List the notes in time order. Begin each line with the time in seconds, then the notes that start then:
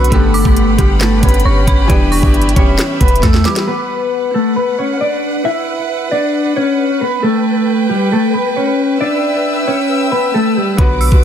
Already playing: B1 D3 F#3 B3 F#4 B4 F#5 C#6 E6
0.04 closed hi-hat
0.10 G1 D3 G3 A3 B3 G4 A4 B4 B5, kick, closed hi-hat
0.34 D6, open hi-hat
0.43 G1 D3 G3 B3 G4, kick
0.57 closed hi-hat
0.77 G1 D3 G3 B3 G4, kick, closed hi-hat
1.01 A3 A4, snare, clap, closed hi-hat
1.21 G1 D3 G3 B3 C#4 B4, kick, closed hi-hat
1.29 closed hi-hat
1.34 closed hi-hat
1.40 closed hi-hat
1.45 G1 C#4 C#5 C#6
1.67 G1 B5, kick, closed hi-hat
1.87 E1 E3 G3 B3 D4 G4 D5 E5, kick, closed hi-hat
2.12 C#6, open hi-hat
2.21 G1 E3 G3 B3 G4, kick
2.34 closed hi-hat
2.42 closed hi-hat
2.49 closed hi-hat
2.55 E1 E3 G3 B3 C#4 G4 C#5, kick, closed hi-hat
2.79 snare, clap, closed hi-hat
3.00 E1 B3 B4, kick, closed hi-hat
3.08 closed hi-hat
3.16 closed hi-hat
3.23 E2 A3 A4 E6, kick, snare, closed hi-hat
3.34 snare
3.44 E3 G3 B3 G4 D6, snare, closed hi-hat
3.56 snare, closed hi-hat
3.67 B3 B4 F#5
4.34 A3 A4
4.56 B3 B4
4.79 C#4 C#5
5.01 D4 D5
5.45 E4 E5
6.11 D4 D5
6.56 C#4 C#5
7.01 B3 B4
7.23 A3 A4 G5
7.89 G3 G4
8.12 A3 A4
8.34 B3 B4
8.57 C#4 C#5
9.01 D4 D5 E5 G5 E6
9.67 C#4 C#5
10.12 B3 B4
10.34 A3 A4
10.57 G3 G4
10.77 B1 D3 F#3 B3 F#4 B4 F#5 D6, kick, closed hi-hat
11.01 E6, open hi-hat
11.10 B1 D3 F#3 B3 F#4, kick